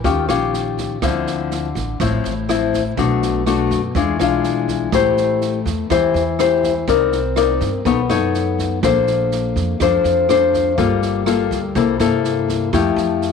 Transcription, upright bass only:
0.04 D#2
0.29 A#1
1.02 D2
1.75 A1
2.00 A1
2.24 A1
2.97 B1
3.71 F#2
3.95 E2
4.19 B1
4.92 A1
5.66 E2
5.90 E2
6.14 E2
6.87 C2
7.61 G2
7.85 B1
8.09 F#2
8.83 A#1
9.56 F2
9.80 F2
10.04 F2
10.78 G1
11.51 D2
11.75 C2
11.99 G2
12.73 F2
12.96 F2

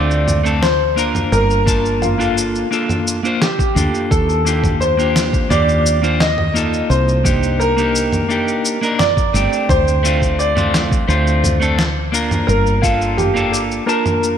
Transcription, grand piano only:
Already playing: D5
0.62 C5
1.32 A#4
2.02 F4
3.42 G4
4.11 A4
4.81 C5
5.50 D5
6.20 D#5
6.90 C5
7.60 A#4
8.99 D5
9.69 C5
10.39 D5
11.08 C5
12.47 A#4
12.82 F4
13.17 G4
13.52 G4
13.87 A#4

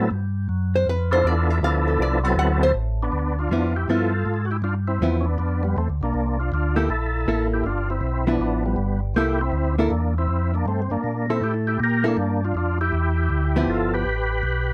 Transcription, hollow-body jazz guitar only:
0.76 C5
0.89 B4
1.13 C5
1.27 D5
1.50 E5
1.64 F5
1.88 A4
2.02 D5
2.25 F5
2.39 F#5
2.63 C5
3.51 F3 B3 E4
3.89 F3 B3 E4
5.02 F3 B3 E4
6.76 A#3 E4 A4
7.28 A#3 E4 A4
8.27 F3 B3 E4
9.16 A#3 E4 A4
9.78 A#3 E4 A4
11.30 E4 A4
12.04 A#3 E4 A4
13.56 F3 B3 E4

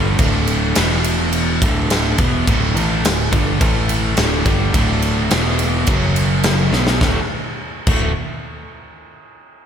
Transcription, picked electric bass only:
Already playing: G1
0.19 D1
0.78 E1
1.62 D1
2.18 E1
2.47 D1
2.75 A1
3.04 D1
3.32 G1
3.62 A1
4.18 D1
4.46 G1
4.74 D1
5.31 E1
5.87 F#1
6.72 B1
7.01 D1
7.87 D1

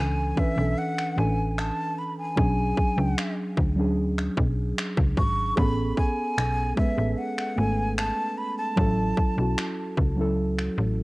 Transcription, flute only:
Already playing: G#5
0.38 E5
0.78 F#5
1.18 G#5
1.51 G#5
1.58 A5
1.99 B5
2.18 G#5
5.18 C#6
5.58 B5
5.98 G#5
6.78 E5
7.18 F#5
7.58 G#5
7.98 A5
8.38 B5
8.58 A5

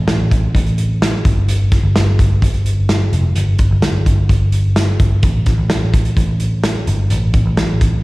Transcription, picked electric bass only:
0.07 A1
0.55 A1
1.25 G1
1.83 G1
1.96 G1
2.42 G1
3.12 F1
3.36 G1
3.71 G1
3.83 G1
4.29 G1
5.00 G1
5.23 A1
5.58 A1
5.70 A1
6.17 A1
6.87 G1
7.11 A1
7.46 A1
7.58 A1

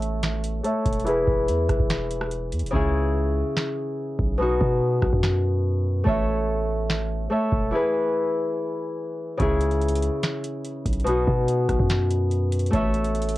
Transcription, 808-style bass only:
Already playing: A1
0.86 E1
1.27 E1
1.48 E2
1.69 E1
1.79 E1
2.52 E2
2.63 E1
2.73 C#2
4.19 B1
4.61 B2
5.02 B1
5.13 F#2
6.07 A1
7.52 E1
9.40 C#2
10.86 B1
11.27 B2
11.69 B1
11.79 F#2
12.73 A1

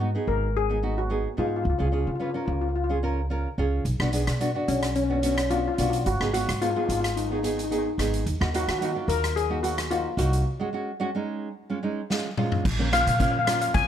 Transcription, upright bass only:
Already playing: G#2
0.27 G#1
1.38 G#2
1.65 C#2
1.80 C#2
2.07 C#3
2.48 C#2
3.58 C#2
3.85 B1
4.00 B1
4.27 B2
4.68 B1
5.78 B1
6.06 G#1
6.21 G#1
6.48 G#2
6.89 G#1
7.98 G#1
8.26 D#2
8.41 D#2
8.68 D#3
9.08 D#2
10.17 C2
12.65 A#1
13.07 A#2
13.75 F2

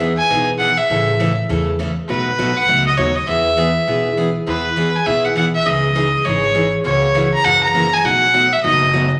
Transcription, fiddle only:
0.17 G#5
0.59 F#5
0.77 E5
2.09 B4
2.57 F#5
2.87 D#5
2.97 C#5
3.16 D#5
3.28 E5
4.47 B4
4.96 G#5
5.06 E5
5.25 F#5
5.37 F#5
5.55 E5
5.66 D#5
6.25 C#5
6.85 C#5
7.34 A#5
7.45 F#5
7.63 A#5
7.94 G#5
8.05 F#5
8.53 E5
8.63 D#5

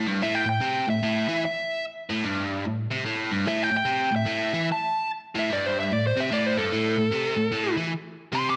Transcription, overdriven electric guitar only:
0.06 G2
0.22 A2
0.46 A2
0.61 C3
0.88 A2
1.03 A2
1.28 E3
2.09 A2
2.24 G2
2.65 A2
2.91 C3
3.05 A2
3.31 G2
3.46 A2
3.71 A2
3.85 C3
4.12 A2
4.26 A2
4.53 E3
5.35 A2
5.50 G2
5.92 A2
6.17 C3
6.31 A2
6.57 G2
6.71 A2
6.97 A2
7.11 C3
7.37 A2
7.52 A2
7.77 E3
8.33 C3

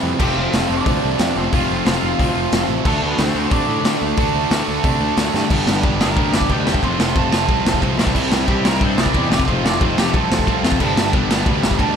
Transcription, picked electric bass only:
0.03 F2
0.20 F1
0.36 F1
0.54 F1
0.70 F1
0.87 D2
1.04 C2
1.20 F2
1.36 F1
1.53 F1
1.71 F1
1.87 F1
2.03 F1
2.20 D2
2.35 F1
2.52 F1
2.69 A1
2.85 D2
3.02 D2
3.18 D2
3.35 D2
3.51 C3
3.68 A2
3.84 D3
4.02 D2
4.18 D2
4.34 D2
4.51 D2
4.68 D2
4.84 C3
5.01 D2
5.17 D2
5.34 G2
5.50 G1
5.68 G1
5.84 G1
6.17 D2
6.35 G1
6.50 D2
6.67 E1
6.83 F1
6.99 F1
7.16 F1
7.48 C2
7.65 F1
7.83 C2
7.98 C2
8.15 C2
8.30 C2
8.48 C2
8.81 G2
8.97 C2
9.15 E2
9.30 F1
9.48 F1
9.64 F1
9.81 F1
10.14 C2
10.30 F1
10.47 C2
10.63 F2
10.80 G1
10.97 G1
11.13 G1
11.47 D2
11.64 G1
11.79 D2

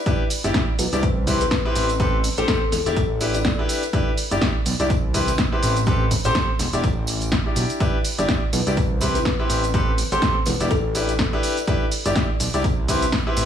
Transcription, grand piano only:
0.06 D4 E4 G4 B4
0.44 D4 E4 G4 D5
0.93 D4 E4 G4 D5
1.27 C4 E4 G4 B4
1.65 C4 E4 G4 B4
2.00 C4 G4 A4 B4
2.38 C4 G4 A4 C5
2.86 D4 E4 G4 D5
3.21 D4 E4 G4 B4
3.59 D4 E4 G4 B4
3.93 D4 E4 G4 B4
4.31 D4 E4 G4 D5
4.80 D4 E4 G4 D5
5.14 C4 E4 G4 B4
5.52 C4 E4 G4 B4
5.87 C4 G4 A4 B4
6.25 C4 G4 A4 C5
6.73 D4 E4 G4 D5
7.46 D4 E4 G4 D5
7.80 D4 E4 G4 B4
8.18 D4 E4 G4 D5
8.67 D4 E4 G4 D5
9.01 C4 E4 G4 B4
9.39 C4 E4 G4 B4
9.74 C4 G4 A4 B4
10.12 C4 G4 A4 C5
10.60 D4 E4 G4 D5
10.95 D4 E4 G4 B4
11.33 D4 E4 G4 B4
11.67 D4 E4 G4 B4
12.06 D4 E4 G4 D5
12.54 D4 E4 G4 D5
12.88 C4 E4 G4 B4
13.27 C4 E4 G4 B4

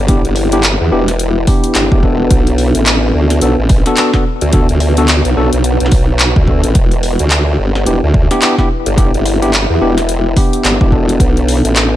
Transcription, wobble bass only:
Already playing: G1
0.25 G1
0.81 E2
0.92 E1
1.75 G1
1.92 E1
2.31 B1
2.75 A1
3.14 D2
3.42 B1
3.59 A1
4.42 D2
4.70 D2
5.25 B1
5.37 B1
5.53 B1
5.81 B1
6.36 D2
6.64 A1
6.75 E1
7.20 D2
7.59 G1
7.87 E1
8.03 D2
8.87 G1
9.15 G1
9.70 E2
9.81 E1
10.64 G1
10.81 E1
11.20 B1
11.64 A1

